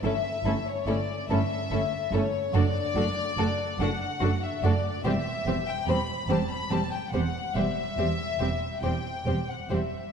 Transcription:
X:1
M:12/8
L:1/16
Q:3/8=48
K:Clyd
V:1 name="Violin section"
e3 ^c d2 e4 c2 d6 f3 e d2 | e3 g b2 a b a g f2 e6 g3 f e2 |]
V:2 name="Violin section"
[EA]2 [EA]2 [EA]2 [EA]2 [EA]2 [EA]2 [FA]2 [FA]2 [FA]2 [FA]2 [FA]2 [FA]2 | [Gc]2 [Gc]2 [Gc]2 [Gc]2 [Gc]2 [Gc]2 [Gc]2 [Gc]2 [Gc]2 [Gc]2 [Gc]2 [Gc]2 |]
V:3 name="Viola section"
[A,^C]2 [A,C]2 [A,C]2 [A,C]2 [A,C]2 [A,C]2 [A,D]2 [A,D]2 [A,D]2 [A,D]2 [A,D]2 [A,D]2 | [G,C]2 [G,C]2 [G,C]2 [G,C]2 [G,C]2 [G,C]2 [G,C]2 [G,C]2 [G,C]2 [G,C]2 [G,C]2 [G,C]2 |]
V:4 name="Cello section" clef=bass
G,,2 G,,2 G,,2 G,,2 G,,2 G,,2 F,,2 F,,2 F,,2 F,,2 F,,2 F,,2 | E,,2 E,,2 E,,2 E,,2 E,,2 E,,2 E,,2 E,,2 E,,2 E,,2 E,,2 E,,2 |]
V:5 name="Double bass section" clef=bass
G,,,2 G,,,2 G,,,2 G,,,2 G,,,2 G,,,2 F,,,2 F,,,2 F,,,2 F,,,2 F,,,2 F,,,2 | E,,,2 E,,,2 E,,,2 E,,,2 E,,,2 E,,,2 E,,,2 E,,,2 E,,,2 E,,,2 E,,,2 E,,,2 |]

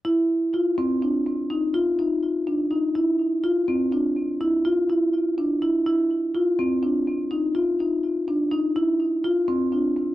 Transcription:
X:1
M:6/8
L:1/8
Q:3/8=83
K:Dm
V:1 name="Marimba"
E2 F C D2 | _E F E2 D E | E2 F C D2 | E F E2 D E |
E2 F C D2 | _E F E2 D E | E2 F C D2 |]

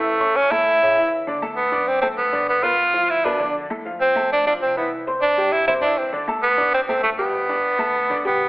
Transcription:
X:1
M:4/4
L:1/8
Q:1/4=198
K:Ddor
V:1 name="Upright piano"
[E,Ee] [^C^c^c']2 [A,Aa]2 [^C,Cc] [E,Ee]2 | [D,Dd] [A,Aa]2 [Ddd']2 [A,Aa]2 [D,Dd]- | [D,Dd] [B,Bb]2 [F,Ff]2 [B,,B,B] [D,Dd]2 | [A,,A,A] [F,Ff]2 [A,Aa]2 [F,Ff]2 [E,Ee]- |
[E,Ee] [Ccc']2 [G,Gg]2 [C,Cc] [E,Ee]2 | [D,Dd] [A,Aa]2 [Ddd']2 [A,Aa]2 [G,Gg]- | [G,Gg] [Ddd']2 [A,Aa]2 [D,Dd] [G,Gg]2 |]
V:2 name="Tenor saxophone"
A,2 ^C E4 z | z2 B,2 C C B,2 | B, F3 E D2 z | z2 C2 D D C B, |
z2 D2 E E D C | z2 B,2 C C A, B,- | B,6 B,2 |]
V:3 name="Upright bass" clef=bass
A,,,3 E,,3 D,,2- | D,,3 ^F,,3 G,,2- | G,,3 D,,3 F,,2- | F,,3 F,,3 C,,2- |
C,,3 G,,3 D,,2- | D,,3 A,,,3 G,,,2- | G,,,3 D,,3 C,,2 |]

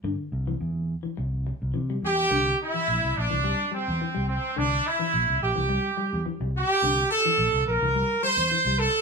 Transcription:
X:1
M:4/4
L:1/16
Q:1/4=106
K:Cmix
V:1 name="Horn section"
z12 z2 G2- | G2 E4 D4 C4 C2 | D2 E4 G6 z2 G2- | G2 A4 B4 c4 A2 |]
V:2 name="Clean electric guitar" clef=bass
D,2 z E,2 z2 E, z4 E, G,2 z | D,2 z E,2 z2 E, G,2 G,2 E, G,2 z | D,2 z E,2 z2 E, G,2 G,2 E, G,2 z | D,2 z E,2 z2 E, G,2 G,2 E, G,2 z |]
V:3 name="Fingered electric bass" clef=bass
G,, z C,,2 E,,3 z C,,3 C,, C,2 E,,2 | C,,2 z2 B,,, C,, B,,, C,,2 z2 E,, z C,,2 z | C,,2 z2 B,,, C,, B,,, C,,2 z2 E,, z C,,2 z | C,,2 z2 B,,, C,, B,,, C,,2 z2 E,, z C,,2 z |]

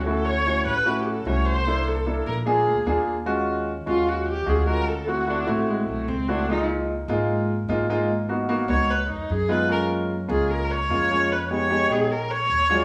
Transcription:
X:1
M:4/4
L:1/16
Q:1/4=149
K:D
V:1 name="Viola"
A2 c4 B3- B/2 G/2 A2 c2 =c2- | =c2 A4 _B2 ^G6 z2 | [K:Ebm] z6 F2 G2 =G2 A2 B2 | =A2 ^F2 =D2 =A,2 _A,2 =A,2 =C2 D2 |
E2 z12 z2 | z6 d2 c2 E2 A2 c2 | B2 z4 A2 B2 d6 | c2 d4 A2 B2 d6 |]
V:2 name="Grand piano"
[A,CEF]2 z2 [A,CEF]2 z2 [A,CEF]2 z2 [A,CEF]2 z2 | [_B,DEA]2 z2 [B,DEA]2 z2 [^A,D^E^G]2 z2 [A,DEG]2 z2 | [K:Ebm] [A,DFG]4 z2 [A,DFG]4 z2 [A,DFG]2 [A,DFG]2 | z2 [=A,=C=E^F]2 [A,CEF]2 [A,CEF]6 z2 [A,CEF]2 |
[A,B,EF]4 z2 [A,B,EF]4 z2 [A,B,EF]2 [A,B,EF]2 | z2 [B,CEG]2 [B,CEG]2 [B,CEG]2 z6 [A,CEF]2 | [A,B,DF]4 z2 [A,B,DF]4 z2 [A,B,DF]2 [A,B,DF]2 | z2 [A,CE=G]2 [A,CEG]2 [A,CEG]2 z6 [_G,A,=DF]2 |]
V:3 name="Upright bass" clef=bass
D,,6 A,,,6 =C,,4- | =C,,6 _B,,,4 D,,2 ^D,,4- | [K:Ebm] ^D,,6 E,,6 =D,,4- | =D,,6 =A,,,4 C,,2 _D,,4- |
D,,6 A,,,6 A,,,4- | A,,,6 D,,4 F,,2 G,,4- | G,,6 D,,6 F,,4- | F,,6 B,,,6 E,,4 |]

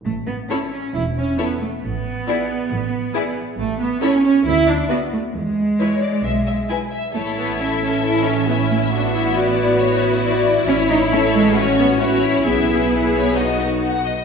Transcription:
X:1
M:4/4
L:1/8
Q:1/4=136
K:A
V:1 name="Violin section"
z2 c2 z2 c2 | z2 d2 z2 d2 | z2 c2 z2 d2 | z2 B2 z2 B2 |
c2 e4 e2- | e2 d2 c B d2 | [K:Alyd] c2 c2 c2 c2 | e2 B c d d f d |]
V:2 name="Violin section"
z2 A2 z2 A2 | z2 G2 z2 G2 | z2 A2 z2 B2 | z2 c d e e g e |
A2 A4 E2 | F2 E2 E4- | [K:Alyd] E2 A2 F2 E2 | G4 F3 z |]
V:3 name="Viola section"
z2 E2 z2 E2 | z2 E2 z2 E2 | z2 E2 z2 F2 | z2 E2 z2 E2 |
E4 C4 | D E F6 | [K:Alyd] E4 C2 F E | E4 D3 z |]
V:4 name="Cello section"
A, B, C C E C B, A, | B,6- B, z | A, B, C C E D B, A, | G,6 z2 |
A, B, C C E C B, A, | B,6- B, z | [K:Alyd] C D C G, A, B, C2 | B,6- B, z |]
V:5 name="Double bass section" clef=bass
A,,,2 z2 E,,,2 z2 | A,,,2 z2 A,,,2 z2 | A,,,2 z2 D,,2 z2 | E,,2 z2 B,,,2 z2 |
A,,,8- | A,,,8 | [K:Alyd] A,,,8 | B,,,6- B,,, z |]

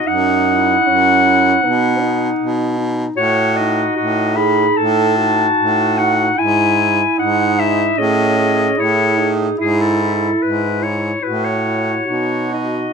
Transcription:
X:1
M:4/4
L:1/16
Q:1/4=75
K:Bmix
V:1 name="Clarinet"
f12- f2 z2 | c2 d4 b2 a6 f2 | g4 f2 e2 d4 c3 z | G A3 B2 c2 B c4- c d2 |]
V:2 name="Alto saxophone"
D4 C4 B,2 D4 z2 | F4 F2 G2 A2 F6 | E4 D4 C4 E2 D2 | E6 z2 F4 F4 |]
V:3 name="Clarinet"
z2 E4 E2 D2 D4 D2 | z2 D4 D4 D4 D2 | E2 E4 E2 G2 G4 G2 | E2 E4 E2 E2 E2 D2 D2 |]
V:4 name="Baritone saxophone" clef=bass
F,,4 F,,4 B,,4 B,,4 | A,,4 A,,4 A,,4 A,,4 | G,,4 G,,4 A,,4 A,,4 | G,,4 G,,4 A,,4 B,,4 |]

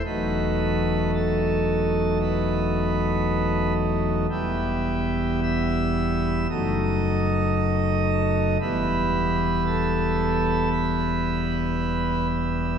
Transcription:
X:1
M:4/4
L:1/8
Q:1/4=57
K:Em
V:1 name="Pipe organ"
B2 A2 B3 z | G2 e2 ^d4 | B2 A2 B3 z |]
V:2 name="Pipe organ" clef=bass
[E,,,E,,F,A,^D]8 | [E,,,E,,G,B,E]4 [F,,,F,,F,A,^D]4 | [E,,,E,,G,B,E]8 |]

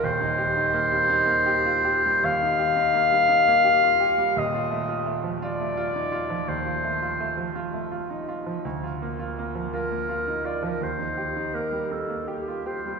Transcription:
X:1
M:12/8
L:1/16
Q:3/8=56
K:Cdor
V:1 name="Clarinet"
c12 f12 | e4 z2 d6 c6 z6 | z6 B4 d B c4 B2 A2 G2 c2 |]
V:2 name="Grand piano"
[E,,,E,,] E G E B, G, E B, G F G G, E,, E G E B, G, E B, G F G G, | [E,,,E,,] F A, F A, F, F A, F E F F, E,, F A, F A, F, F A, F E F F, | D,, F B, F B, F, F B, F E F F, E,, E G E B, G, E B, G F G G, |]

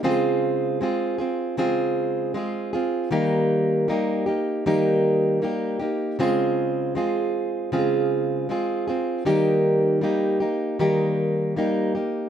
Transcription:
X:1
M:4/4
L:1/8
Q:"Swing 16ths" 1/4=78
K:Ebmix
V:1 name="Steel-string acoustic guitar"
[D,A,CFA]2 [A,CFA] [CFA] [D,A,CFA]2 [A,CFA] [CFA] | [E,G,B,EG]2 [G,B,EG] [B,EG] [E,G,B,EG]2 [G,B,EG] [B,EG] | [D,A,CFA]2 [A,CFA]2 [D,A,CFA]2 [A,CFA] [CFA] | [E,G,B,EG]2 [G,B,EG] [B,EG] [E,G,B,EG]2 [G,B,EG] [B,EG] |]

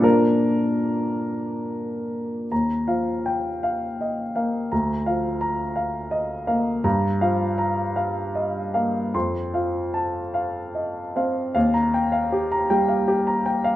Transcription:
X:1
M:6/8
L:1/16
Q:3/8=53
K:Eblyd
V:1 name="Grand piano"
B6 z6 | b2 f2 g2 f2 e2 f2 | b2 f2 b2 f2 e2 f2 | b2 f2 b2 f2 e2 f2 |
c'2 f2 a2 f2 e2 f2 | f b g f G b g f G b g f |]
V:2 name="Grand piano" clef=bass
[B,,F,B,D]12 | E,,2 F,4 z4 B,2 | D,,2 F,4 z4 B,2 | G,,2 F,4 z4 B,2 |
F,,2 F,4 z4 C2 | E,,6 G,6 |]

